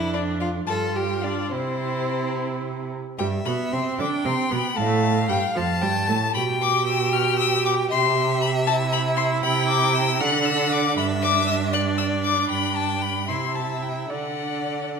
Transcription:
0.00 0.64 F2 medium
0.00 0.65 D4 medium
0.00 0.15 E4 loud
0.13 0.40 D4 medium
0.13 0.21 D5 medium
0.40 0.49 F4 loud
0.40 0.48 F5 loud
0.67 1.50 G2 medium
0.67 1.53 F4 medium
0.67 0.97 A4 loud
0.67 0.75 A5 loud
0.95 1.25 G4 medium
0.95 1.25 G5 medium
1.23 1.53 D4 medium
1.23 1.51 D5 loud
1.51 2.95 C3 medium
1.51 2.91 C4 medium
1.51 2.98 E4 medium
1.51 2.88 C5 loud
3.18 3.44 G2 loud
3.18 3.27 G3 loud
3.18 3.95 E5 medium
3.18 3.26 G5 loud
3.45 3.53 B2 medium
3.45 3.74 B3 medium
3.45 3.53 B5 loud
3.72 3.80 C3 medium
3.72 4.00 C4 medium
3.72 3.99 C6 medium
3.99 4.07 D3 medium
3.99 4.26 D4 loud
3.99 4.79 G5 loud
3.99 4.07 D6 loud
4.25 4.33 C3 loud
4.25 4.52 C4 loud
4.25 4.53 C6 loud
4.51 4.59 B2 medium
4.51 4.76 B3 medium
4.51 4.78 B5 loud
4.76 5.29 A2 loud
4.76 5.28 A3 loud
4.76 5.58 F5 medium
4.76 5.28 A5 loud
5.29 5.38 G2 medium
5.29 5.37 G3 medium
5.29 5.55 G5 loud
5.55 5.84 F2 medium
5.55 5.63 F3 loud
5.55 5.83 F5 loud
5.55 6.34 A5 loud
5.82 6.11 G2 loud
5.82 5.90 G3 medium
5.82 6.09 G5 loud
6.07 6.34 A2 loud
6.07 6.16 A3 medium
6.07 6.34 A5 loud
6.34 7.87 B2 loud
6.34 8.69 G4 medium
6.34 7.88 G5 loud
6.34 6.42 B5 loud
6.61 6.86 D6 loud
6.87 7.14 E6 loud
7.13 7.38 F6 loud
7.39 7.64 E6 loud
7.66 7.74 D6 loud
7.91 9.40 C3 loud
7.91 9.40 E5 loud
7.91 8.41 C6 loud
8.41 8.49 B5 loud
8.67 10.20 E4 loud
8.67 8.75 A5 loud
8.93 9.01 B5 loud
9.17 9.25 C6 loud
9.42 10.22 C3 loud
9.42 10.22 G5 loud
9.42 9.68 B5 loud
9.68 9.96 D6 loud
9.95 10.22 E6 loud
10.20 10.96 D3 loud
10.20 13.25 D4 loud
10.20 10.96 F#5 loud
10.20 10.47 F#6 loud
10.45 10.74 E6 loud
10.72 10.97 D6 loud
10.97 12.47 G2 loud
10.97 11.75 E5 loud
10.97 11.05 B5 loud
11.22 11.47 D6 loud
11.47 11.55 E6 loud
11.73 12.48 D5 loud
11.73 11.81 F#6 loud
11.98 12.06 E6 loud
12.24 12.49 D6 loud
12.49 13.30 G2 medium
12.49 13.27 G5 loud
12.49 12.77 B5 loud
12.76 13.03 A5 loud
13.02 13.30 B5 loud
13.28 14.09 C3 medium
13.28 14.11 E4 medium
13.28 14.11 E5 medium
13.28 13.57 C6 loud
13.55 13.84 A5 medium
13.82 14.09 G5 medium
14.09 15.00 D3 medium
14.09 15.00 D4 medium
14.09 15.00 D5 medium
14.09 15.00 F#5 medium

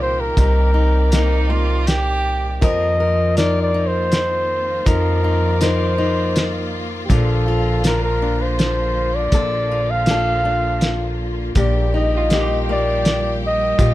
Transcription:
0.00 0.33 C2 medium
0.00 2.58 A#2 medium
0.00 0.36 C3 medium
0.00 2.58 D#3 medium
0.00 1.11 A#3 medium
0.00 0.34 C4 medium
0.00 0.37 D#4 medium
0.00 0.55 F4 medium
0.00 2.58 G4 medium
0.00 0.40 A#4 medium
0.00 0.22 C5 medium
0.20 1.88 A#4 medium
0.37 2.58 C2 medium
0.37 2.62 C3 medium
0.37 0.73 D#4 medium
0.37 2.60 D5 medium
0.37 kick medium
0.37 closed hi-hat soft
0.74 1.12 D#4 medium
1.12 1.49 A#3 medium
1.12 1.51 D#4 medium
1.12 2.58 D#4 soft
1.12 snare medium
1.12 closed hi-hat medium
1.50 4.86 A#3 medium
1.50 1.88 F4 medium
1.87 2.62 G4 loud
1.87 snare medium
1.87 closed hi-hat medium
2.61 4.82 F2 medium
2.61 7.06 D#3 medium
2.61 4.85 F3 medium
2.61 13.94 A#3 medium
2.61 4.85 C4 medium
2.61 11.52 F4 medium
2.61 3.00 A#4 medium
2.61 3.34 D#5 loud
2.61 kick medium
2.61 closed hi-hat soft
3.00 3.37 A#4 medium
3.37 3.74 D#4 medium
3.37 5.61 A#4 medium
3.37 3.61 D5 medium
3.37 snare medium
3.37 closed hi-hat soft
3.62 3.88 D5 medium
3.74 4.82 D#4 medium
3.87 4.89 C5 medium
4.12 snare medium
4.12 closed hi-hat soft
4.86 7.05 F2 medium
4.86 7.09 F3 medium
4.86 5.23 D#4 medium
4.86 5.63 A#4 medium
4.86 7.07 D5 medium
4.86 kick medium
4.86 closed hi-hat medium
5.24 5.59 D#4 medium
5.61 5.97 D#4 medium
5.61 9.12 A#4 medium
5.61 6.73 C5 medium
5.61 snare medium
5.61 closed hi-hat medium
5.98 7.05 D#4 medium
6.36 snare medium
6.36 closed hi-hat medium
7.05 9.33 A#2 medium
7.05 7.13 G4 medium
7.10 9.28 A#1 medium
7.10 11.53 D3 medium
7.10 11.56 F3 medium
7.10 11.53 F3 medium
7.10 7.85 D4 medium
7.10 7.48 F4 medium
7.10 7.85 A4 medium
7.10 kick medium
7.10 closed hi-hat medium
7.48 7.86 F4 medium
7.84 8.22 D4 medium
7.84 9.29 F4 medium
7.84 8.02 A#4 medium
7.84 snare medium
7.84 closed hi-hat medium
8.04 8.43 A#4 medium
8.22 10.09 D4 medium
8.41 9.17 C5 medium
8.59 snare medium
8.59 closed hi-hat soft
9.15 9.92 D5 medium
9.32 11.52 A#1 medium
9.32 11.56 A#2 medium
9.32 10.07 A4 medium
9.32 kick loud
9.32 closed hi-hat medium
9.71 10.08 F4 medium
9.90 11.20 F5 loud
10.06 10.45 D4 medium
10.06 11.53 F4 medium
10.06 snare medium
10.06 closed hi-hat soft
10.10 11.53 A4 medium
10.45 11.97 D4 soft
10.81 snare medium
10.81 closed hi-hat soft
11.55 13.75 A#1 medium
11.55 13.75 A#2 medium
11.55 13.94 G3 medium
11.55 13.94 G4 medium
11.55 12.32 G4 medium
11.55 11.92 D5 medium
11.55 kick medium
11.55 closed hi-hat medium
11.94 12.32 D#4 soft
11.94 12.65 D#5 medium
12.17 13.42 F4 soft
12.30 12.69 A#3 medium
12.30 13.94 D#4 medium
12.30 13.80 G4 medium
12.30 snare medium
12.30 closed hi-hat medium
12.40 13.63 G4 soft
12.69 13.94 A#3 medium
12.69 13.40 D5 medium
13.05 snare medium
13.05 closed hi-hat medium
13.46 13.94 D#5 medium
13.78 13.94 A#1 medium
13.78 13.94 A#2 medium
13.78 13.94 F4 soft
13.78 13.94 G4 medium
13.78 kick medium
13.78 closed hi-hat medium

